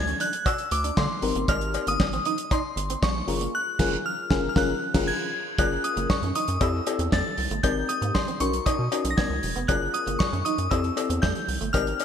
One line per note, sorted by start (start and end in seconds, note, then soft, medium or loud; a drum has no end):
0.00 0.14 D2 medium
0.00 0.18 G#6 loud
0.07 0.16 C#4 medium
0.07 closed hi-hat soft
0.20 0.28 D4 medium
0.20 0.45 F#6 loud
0.20 closed hi-hat medium
0.33 closed hi-hat medium
0.46 0.54 F#4 medium
0.46 0.73 E6 medium
0.46 kick loud
0.46 closed hi-hat medium
0.46 cowbell medium
0.58 closed hi-hat soft
0.71 0.91 D2 medium
0.71 0.83 D6 medium
0.71 muted clean electric guitar stroke soft
0.71 closed hi-hat medium
0.84 0.92 D4 medium
0.84 closed hi-hat medium
0.97 1.07 D3 loud
0.97 1.06 A3 medium
0.97 1.45 C6 medium
0.97 kick loud
0.97 snare loud
0.97 cowbell medium
1.10 muted clean electric guitar stroke soft
1.22 1.32 G#1 loud
1.22 2.05 C4 medium
1.22 2.05 D#4 medium
1.22 2.05 G4 medium
1.22 2.05 A#4 medium
1.22 open hi-hat medium
1.35 1.45 G1 loud
1.35 1.44 A#3 medium
1.35 closed hi-hat soft
1.48 1.78 G#1 loud
1.48 1.57 G#3 medium
1.48 1.84 F6 loud
1.48 kick loud
1.48 closed hi-hat medium
1.48 cowbell medium
1.61 closed hi-hat soft
1.74 muted clean electric guitar stroke soft
1.74 closed hi-hat medium
1.74 cowbell medium
1.87 1.97 G1 medium
1.87 1.96 A#3 medium
1.87 2.25 D#6 medium
1.87 closed hi-hat medium
2.00 2.19 G#1 loud
2.00 muted clean electric guitar stroke soft
2.00 kick loud
2.00 snare loud
2.00 cowbell medium
2.13 2.21 C4 medium
2.13 closed hi-hat soft
2.25 2.34 D#4 medium
2.25 2.38 D#6 medium
2.25 closed hi-hat medium
2.38 closed hi-hat medium
2.51 2.59 D#4 medium
2.51 3.05 C6 medium
2.51 kick loud
2.51 closed hi-hat medium
2.51 cowbell medium
2.76 2.96 G1 medium
2.76 muted clean electric guitar stroke soft
2.76 closed hi-hat medium
2.90 2.98 C4 medium
2.90 closed hi-hat medium
3.02 3.22 A#1 medium
3.02 3.11 A#3 medium
3.02 3.56 C#6 medium
3.02 kick loud
3.02 snare loud
3.02 cowbell medium
3.16 muted clean electric guitar stroke soft
3.27 3.48 F#1 loud
3.27 3.53 C#4 medium
3.27 3.53 F4 medium
3.27 3.54 G#4 medium
3.27 3.54 A#4 medium
3.27 open hi-hat medium
3.41 3.49 A#3 medium
3.41 closed hi-hat soft
3.55 4.02 F#6 loud
3.79 3.97 F#1 loud
3.79 3.97 C#4 loud
3.79 3.97 F4 loud
3.79 3.97 G#4 loud
3.79 3.97 A#4 loud
3.79 kick loud
3.79 snare loud
3.79 crash medium
4.06 4.47 F6 medium
4.30 4.48 F#1 loud
4.30 4.48 C#4 loud
4.30 4.48 F4 loud
4.30 4.48 G#4 loud
4.30 4.48 A#4 loud
4.30 kick loud
4.30 snare loud
4.49 4.56 F6 medium
4.56 4.73 F#1 loud
4.56 4.73 C#4 loud
4.56 4.73 F4 loud
4.56 4.74 G#4 loud
4.56 4.74 A#4 loud
4.56 5.30 F#6 medium
4.56 kick loud
4.56 snare loud
4.94 5.12 F#1 loud
4.94 5.12 C#4 loud
4.94 5.12 F4 loud
4.94 5.12 G#4 loud
4.94 5.12 A#4 loud
4.94 kick loud
4.94 snare loud
4.94 crash medium
5.08 5.60 G#6 medium
5.58 5.78 F#1 loud
5.58 5.67 F#3 medium
5.58 6.15 C#4 medium
5.58 6.15 F4 medium
5.58 6.15 G#4 medium
5.58 6.16 A#4 medium
5.58 5.85 F#6 medium
5.58 kick loud
5.58 closed hi-hat medium
5.58 cowbell medium
5.84 6.11 D#6 medium
5.84 muted clean electric guitar stroke soft
5.84 closed hi-hat medium
5.97 6.07 F#1 loud
5.97 6.05 A#3 medium
5.97 closed hi-hat soft
6.10 6.15 F#2 medium
6.10 6.37 C#6 medium
6.10 kick loud
6.10 snare loud
6.10 cowbell medium
6.22 6.32 F#2 medium
6.22 6.31 C#4 medium
6.22 closed hi-hat soft
6.35 6.44 D#4 medium
6.35 6.62 D#6 medium
6.35 closed hi-hat medium
6.48 6.58 F#2 loud
6.48 closed hi-hat medium
6.61 6.81 F2 loud
6.61 6.82 C4 medium
6.61 6.82 E4 medium
6.61 6.69 E4 medium
6.61 6.82 G4 medium
6.61 6.82 A4 medium
6.61 7.09 E6 medium
6.61 kick loud
6.61 closed hi-hat medium
6.61 cowbell medium
6.86 7.29 C4 medium
6.86 7.29 E4 medium
6.86 7.29 G4 medium
6.86 7.29 A4 medium
6.86 muted clean electric guitar stroke soft
6.86 closed hi-hat medium
6.86 cowbell medium
6.99 7.09 E2 loud
6.99 7.08 C4 medium
6.99 closed hi-hat medium
7.12 7.22 F2 loud
7.12 7.21 A3 medium
7.12 7.66 A6 medium
7.12 kick loud
7.12 snare loud
7.12 cowbell medium
7.26 muted clean electric guitar stroke soft
7.38 7.48 C2 medium
7.38 open hi-hat medium
7.50 7.61 G1 loud
7.50 7.59 A3 medium
7.50 closed hi-hat soft
7.63 7.83 G#1 loud
7.63 7.72 G#3 medium
7.63 8.20 C4 medium
7.63 8.20 D#4 medium
7.63 8.21 G4 medium
7.63 8.21 A#4 medium
7.63 7.87 G6 loud
7.63 kick loud
7.63 closed hi-hat medium
7.63 cowbell medium
7.89 8.16 D#6 medium
7.89 muted clean electric guitar stroke soft
7.89 closed hi-hat medium
8.02 8.12 G#2 medium
8.02 8.10 A#3 medium
8.02 closed hi-hat soft
8.15 8.39 C6 medium
8.15 muted clean electric guitar stroke soft
8.15 kick loud
8.15 snare loud
8.15 cowbell medium
8.28 8.36 C4 medium
8.28 closed hi-hat soft
8.40 8.60 B1 medium
8.40 8.49 C#4 medium
8.40 8.82 C#4 medium
8.40 8.82 D#4 medium
8.40 8.82 F#4 medium
8.40 8.82 A#4 medium
8.40 8.65 C#6 medium
8.40 closed hi-hat medium
8.53 closed hi-hat soft
8.66 8.71 B2 soft
8.66 8.74 D#4 medium
8.66 9.12 D#6 medium
8.66 kick loud
8.66 closed hi-hat medium
8.66 cowbell medium
8.79 8.89 B2 medium
8.92 9.34 C#4 medium
8.92 9.34 D#4 medium
8.92 9.35 F#4 medium
8.92 9.35 A#4 medium
8.92 muted clean electric guitar stroke soft
8.92 closed hi-hat medium
8.92 cowbell medium
9.05 9.15 B1 medium
9.05 9.13 C#4 medium
9.05 closed hi-hat medium
9.11 9.18 A#6 medium
9.17 9.26 B3 medium
9.17 9.70 G#6 medium
9.17 kick loud
9.17 snare loud
9.17 cowbell medium
9.30 9.40 C#2 medium
9.30 muted clean electric guitar stroke soft
9.43 9.53 E1 loud
9.43 open hi-hat medium
9.56 9.66 F1 medium
9.56 9.64 B3 medium
9.56 closed hi-hat soft
9.68 9.89 F#1 loud
9.68 9.77 F#3 medium
9.68 10.25 C#4 medium
9.68 10.26 F4 medium
9.68 10.26 G#4 medium
9.68 10.26 A#4 medium
9.68 9.92 F#6 loud
9.68 kick loud
9.68 closed hi-hat medium
9.68 cowbell medium
9.94 10.18 D#6 medium
9.94 muted clean electric guitar stroke soft
9.94 closed hi-hat medium
10.07 10.17 F#1 medium
10.07 10.15 A#3 medium
10.07 closed hi-hat medium
10.19 10.25 F#2 medium
10.19 10.46 C#6 medium
10.19 kick loud
10.19 snare loud
10.19 cowbell medium
10.32 10.43 F#2 loud
10.32 10.41 C#4 medium
10.32 closed hi-hat soft
10.45 10.54 D#4 medium
10.45 10.72 D#6 loud
10.45 closed hi-hat medium
10.58 10.68 F#2 medium
10.58 closed hi-hat medium
10.71 10.91 F2 loud
10.71 10.92 C4 medium
10.71 10.79 E4 medium
10.71 10.92 E4 medium
10.71 10.92 G4 medium
10.71 10.92 A4 medium
10.71 11.19 E6 medium
10.71 kick loud
10.71 closed hi-hat medium
10.71 cowbell medium
10.84 closed hi-hat soft
10.96 11.39 C4 medium
10.96 11.39 E4 medium
10.96 11.39 G4 medium
10.96 11.40 A4 medium
10.96 muted clean electric guitar stroke soft
10.96 closed hi-hat medium
10.96 cowbell medium
11.10 11.20 E2 medium
11.10 11.18 C4 medium
11.10 closed hi-hat medium
11.22 11.33 F2 loud
11.22 11.31 A3 medium
11.22 11.75 G6 loud
11.22 kick loud
11.22 snare loud
11.22 cowbell medium
11.35 muted clean electric guitar stroke soft
11.35 closed hi-hat soft
11.48 11.58 C2 medium
11.48 open hi-hat medium
11.61 11.71 G1 medium
11.61 11.69 A3 medium
11.61 closed hi-hat soft
11.73 11.94 G#1 loud
11.73 11.82 G#3 medium
11.73 12.05 C4 medium
11.73 12.05 D#4 medium
11.73 12.05 G4 medium
11.73 12.05 A#4 medium
11.73 12.05 F6 loud
11.73 kick loud
11.73 closed hi-hat medium
11.73 cowbell medium
11.87 closed hi-hat soft
12.00 muted clean electric guitar stroke soft
12.00 closed hi-hat medium
12.00 cowbell medium